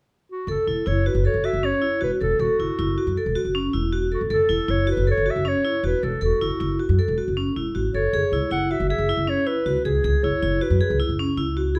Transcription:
0.32 clarinet F#4
0.47 upright bass F#1, vibraphone A4, clarinet A4
0.67 upright bass E1, vibraphone E4
0.86 upright bass F#1, vibraphone E4, clarinet C#5
1.06 vibraphone F#4, clarinet B4
1.15 upright bass F#1
1.25 vibraphone A4, clarinet C#5
1.34 upright bass F#1
1.44 vibraphone F#4, clarinet E5
1.53 upright bass F#1
1.63 vibraphone C#4, clarinet C#5
1.82 vibraphone E4
2.01 upright bass E1, vibraphone F#4, clarinet B4
2.21 upright bass E1, vibraphone A4, clarinet A4
2.39 upright bass E1, clarinet F#4, vibraphone A4
2.59 upright bass F#1, vibraphone E4
2.79 upright bass F#1, vibraphone E4
2.98 vibraphone F#4
3.07 upright bass F#2
3.17 vibraphone A4
3.26 upright bass E1
3.36 vibraphone F#4
3.45 upright bass F#1
3.55 vibraphone C#4
3.73 upright bass E1, vibraphone E4
3.93 vibraphone F#4
4.12 clarinet F#4, vibraphone A4
4.21 upright bass F#1
4.30 upright bass F#1, vibraphone A4, clarinet A4
4.49 upright bass E1, vibraphone E4
4.68 upright bass F#1, vibraphone E4, clarinet C#5
4.87 vibraphone F#4
4.91 clarinet B4
4.97 upright bass F#1
5.07 vibraphone A4
5.11 clarinet C#5
5.17 upright bass F#1
5.26 vibraphone F#4
5.30 clarinet E5
5.36 upright bass F#1
5.45 vibraphone C#4, clarinet C#5
5.65 vibraphone E4
5.83 upright bass E1, vibraphone F#4, clarinet B4
6.03 upright bass E1, vibraphone A4, clarinet A4
6.21 upright bass E1, clarinet F#4, vibraphone A4
6.41 upright bass F#1, vibraphone E4
6.60 upright bass F#1, vibraphone E4
6.79 vibraphone F#4
6.89 upright bass F#2
6.99 vibraphone A4
7.08 upright bass E1
7.18 vibraphone F#4
7.28 upright bass F#1
7.37 vibraphone C#4
7.56 upright bass E1, vibraphone E4
7.75 upright bass G#1, vibraphone F#4
7.94 upright bass F#1, vibraphone A4, clarinet C#5
8.13 upright bass F#1, vibraphone G#4
8.32 upright bass C#2, vibraphone E4
8.51 upright bass F#1, vibraphone E4, clarinet F#5
8.71 vibraphone F#4, clarinet E5
8.80 upright bass F#1
8.89 vibraphone G#4, clarinet E5
8.98 upright bass F#1
9.09 vibraphone E4
9.17 upright bass F#1
9.28 vibraphone C#4, clarinet C#5
9.47 vibraphone E4, clarinet B4
9.66 upright bass C#2, vibraphone F#4
9.84 upright bass C#2, clarinet G#4, vibraphone G#4
10.04 upright bass C#2, vibraphone G#4
10.23 upright bass F#1, vibraphone E4, clarinet C#5
10.42 upright bass F#1, vibraphone E4
10.61 vibraphone F#4, clarinet B4
10.70 upright bass F#2
10.81 vibraphone G#4
10.90 upright bass C#2
11.00 vibraphone E4
11.09 upright bass F#1
11.19 vibraphone C#4
11.37 upright bass C#2, vibraphone E4
11.57 vibraphone F#4
11.75 clarinet E4, vibraphone G#4

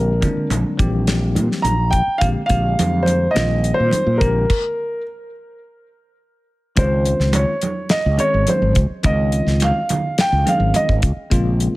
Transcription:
Already playing: fretless electric bass A#1, tine electric piano D3 G#3 A#3 C4 G4, grand piano A#4
0.20 tine electric piano D3 G#3 A#3 C4 D4, kick, closed hi-hat, muted conga, low conga
0.37 muted fretless electric bass stroke
0.50 fretless electric bass A#1, closed hi-hat, high conga
0.77 fretless electric bass A#1, tine electric piano E3 G3 A#3 C4 G4, kick, closed hi-hat
1.07 snare, closed hi-hat
1.35 fretless electric bass A#2, closed hi-hat, high conga
1.52 snare
1.62 fretless electric bass A#1, grand piano A#5, closed hi-hat, high conga
1.91 grand piano G5, kick, closed hi-hat, muted conga
2.07 muted fretless electric bass stroke
2.18 fretless electric bass A#1, tine electric piano D3 G#3 A#3 C4 G4, grand piano F5, kick, closed hi-hat
2.22 muted conga
2.46 fretless electric bass A#1, tine electric piano D3 G#3 A#3 G4, grand piano F5, kick, closed hi-hat
2.50 tine electric piano C4
2.79 fretless electric bass F2, closed hi-hat, high conga
3.03 grand piano C5, high conga
3.07 closed hi-hat
3.31 tine electric piano D#3 G3 A#3 C4, grand piano D#5
3.36 fretless electric bass A#1, tine electric piano F4, snare, closed hi-hat
3.64 closed hi-hat
3.74 grand piano C5
3.80 fretless electric bass A#2
3.91 muted fretless electric bass stroke, closed hi-hat, high conga
4.07 fretless electric bass A#2
4.18 fretless electric bass A#1, tine electric piano D3 G#3 A#3 C4 G4, grand piano A#4, kick, muted conga
4.22 closed hi-hat
4.50 kick, crash
6.76 fretless electric bass C#2, tine electric piano D#3 G#3 C4 C#4 F4, grand piano C5, kick, closed hi-hat, muted conga
7.05 closed hi-hat, muted conga
7.20 fretless electric bass C#2, snare
7.33 grand piano C#5, closed hi-hat, high conga
7.61 closed hi-hat, muted conga, high conga
7.89 grand piano D#5, snare, closed hi-hat, muted conga
8.06 fretless electric bass C#2
8.17 tine electric piano D#3 G#3 C4 C#4 G#4, grand piano C#5, closed hi-hat
8.34 fretless electric bass G#1
8.47 grand piano C5, closed hi-hat, high conga
8.62 fretless electric bass G#1
8.75 fretless electric bass C#2, kick, closed hi-hat
8.90 muted fretless electric bass stroke
9.03 fretless electric bass C#2, tine electric piano D#3 G#3 C4 C#4 F4, grand piano D#5, kick, closed hi-hat, muted conga
9.32 closed hi-hat, muted conga
9.47 fretless electric bass C#2, snare
9.60 grand piano F5, closed hi-hat, high conga
9.89 closed hi-hat, high conga, low conga
10.18 grand piano G5, snare, closed hi-hat, muted conga
10.32 fretless electric bass C#2
10.45 tine electric piano D#3 G#3 C4 C#4 G#4, grand piano F5, closed hi-hat, high conga
10.60 fretless electric bass G#1
10.74 grand piano D#5, muted fretless electric bass stroke, closed hi-hat, high conga
10.89 fretless electric bass G#1, kick
11.02 fretless electric bass C#2, kick, closed hi-hat
11.16 muted fretless electric bass stroke
11.30 fretless electric bass A#1, tine electric piano C#3 G#3 A#3 C4 F4, kick, closed hi-hat, muted conga
11.60 closed hi-hat, muted conga

